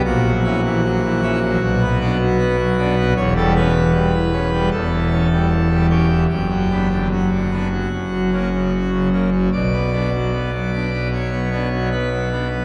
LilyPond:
<<
  \new Staff \with { instrumentName = "Pipe organ" } { \time 4/4 \key b \minor \tempo 4 = 76 fis'1 | cis''16 a'16 b'4. a'4. g'8 | g'4 fis'2~ fis'8 r8 | d''2 cis''4 b'4 | }
  \new Staff \with { instrumentName = "Pipe organ" } { \clef bass \time 4/4 \key b \minor << { ais,16 fis16 <cis' e'>16 e16 fis16 e16 <cis' e'>16 fis16 b,16 b16 <b d'>16 fis16 b16 fis16 <b d'>16 b16 | e,16 g16 cis'16 e16 g16 e16 cis'16 g16 e,16 e16 cis'16 g16 e16 g16 cis'16 e16 | fis,16 fis16 <b d'>16 d16 fis16 d16 <b d'>16 fis16 fis,16 fis16 <ais cis'>16 cis16 fis16 cis16 <ais cis'>16 fis16 | b,16 b16 <b d'>16 fis16 b16 fis16 <b d'>16 b16 fis16 b16 <b d'>16 fis16 b16 fis16 <b d'>16 b16 | } \\ { ais,,2 b,,2 | e,,2 e,,2 | fis,,2 fis,,2 | b,,1 | } >> }
>>